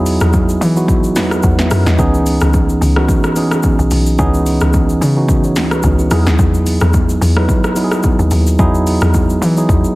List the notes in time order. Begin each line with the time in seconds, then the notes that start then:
Already playing: E2 F#3 B3 D#4 E4 F#4 G#4
0.06 open hi-hat, shaker
0.20 E2, cross-stick, shaker
0.33 kick, shaker
0.49 shaker
0.61 E3, open hi-hat, shaker
0.76 F#3 B3 D#4 E4 F#4, shaker
0.88 kick, shaker
1.04 shaker
1.16 E2 F#3 B3 D#4 E4 B4, snare, open hi-hat, shaker
1.31 cross-stick, shaker
1.43 E2 C#5 F#5, kick, shaker
1.59 B4 E5, snare, shaker
1.71 F#2, cross-stick, open hi-hat, shaker
1.86 E2 G#4 D#5, snare, shaker
1.98 C#2 E3 B3 C#4 D#4 G#4, kick, shaker
2.14 shaker
2.26 open hi-hat, shaker
2.41 C#2, cross-stick, shaker
2.53 kick, shaker
2.69 shaker
2.81 C#2, open hi-hat, shaker
2.96 E3 B3 C#4 D#4 F#4, cross-stick
3.09 kick, shaker
3.24 cross-stick, shaker
3.36 E3 B3 C#4 D#4 G#4, open hi-hat, shaker
3.51 cross-stick, shaker
3.63 kick, shaker
3.79 B1, shaker
3.91 B1, open hi-hat, shaker
4.06 shaker
4.19 C#2 E3 B3 C#4 D#4 G#4, kick, shaker
4.34 shaker
4.46 open hi-hat, shaker
4.61 C#2, cross-stick, shaker
4.73 kick, shaker
4.89 shaker
5.01 C#3, open hi-hat, shaker
5.16 E3 B3 C#4 D#4 F#4
5.29 kick, shaker
5.44 G#4 C#5, shaker
5.56 C#2, snare, open hi-hat, shaker
5.71 F#4 B4, cross-stick, shaker
5.83 C#2 D#4 G#4, kick, shaker
5.99 B3 E4, shaker
6.11 E2 F#3 B3 D#4 E4 G#4, cross-stick, open hi-hat, shaker
6.27 D#2, snare, shaker
6.39 E2, kick, shaker
6.54 shaker
6.66 open hi-hat, shaker
6.81 E2, cross-stick, shaker
6.93 kick, shaker
7.09 shaker
7.21 E2, open hi-hat, shaker
7.36 F#3 B3 D#4 E4 B4, cross-stick
7.49 kick, shaker
7.64 cross-stick, shaker
7.76 F#3 B3 D#4 E4 F#4, open hi-hat, shaker
7.84 G#4
7.92 cross-stick, shaker
8.03 kick, shaker
8.19 D#2, shaker
8.31 D#2, open hi-hat, shaker
8.47 shaker
8.59 E2 F#3 B3 D#4 E4 G#4, kick, shaker
8.74 shaker
8.87 open hi-hat, shaker
9.01 E2, cross-stick, shaker
9.14 kick, shaker
9.30 shaker
9.42 E3, open hi-hat, shaker
9.57 F#3 B3 D#4 E4 G#4, shaker
9.69 E2, kick, shaker
9.84 shaker